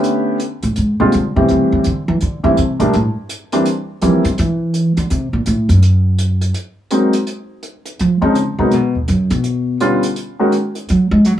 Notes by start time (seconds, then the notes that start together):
Already playing: D3 A3 B3 C#4 G4
0.04 closed hi-hat
0.40 closed hi-hat
0.63 A2, closed hi-hat
0.76 G#2, closed hi-hat
1.00 A#2 D3 G3 G#3 C4 F4
1.12 D3, closed hi-hat
1.36 B2 E3 G3 A3 C4 G4
1.49 C3, closed hi-hat
1.72 C#3
1.84 D3, closed hi-hat
2.08 E3
2.21 D3, closed hi-hat
2.44 C#3 E3 G3 A3 C4 E4
2.57 C3, closed hi-hat
2.79 A#2 F3 G3 A3 A#3 D4, closed hi-hat
2.93 A2, closed hi-hat
3.29 closed hi-hat
3.52 E3 G3 A#3 C4 D4, closed hi-hat
3.65 closed hi-hat
4.02 E3 F3 G3 A#3 C4 E4, closed hi-hat
4.25 D#3, closed hi-hat
4.38 E3, closed hi-hat
4.74 closed hi-hat
4.97 D3, closed hi-hat
5.10 C3, closed hi-hat
5.33 A#2
5.46 A2, closed hi-hat
5.69 F#2, closed hi-hat
5.82 closed hi-hat
6.19 closed hi-hat
6.41 closed hi-hat
6.54 closed hi-hat
6.91 F#3 G#3 A#3 C4 D#4, closed hi-hat
7.13 closed hi-hat
7.27 closed hi-hat
7.63 closed hi-hat
7.86 closed hi-hat
7.99 F3, closed hi-hat
8.21 D#3 F3 G#3 C4 C#4 D#4
8.35 C#3, closed hi-hat
8.59 C3 F#3 G#3 A#3 B3 D#4
8.71 B2, closed hi-hat
8.95 D#2
9.08 F#2, closed hi-hat
9.30 B2, closed hi-hat
9.44 closed hi-hat
9.80 D3 G3 B3 C#4 F4, closed hi-hat
10.03 closed hi-hat
10.16 closed hi-hat
10.39 D#3 G#3 A#3 C#4 F#4
10.52 closed hi-hat
10.75 closed hi-hat
10.89 F#3, closed hi-hat
11.11 G#3
11.25 F#3, closed hi-hat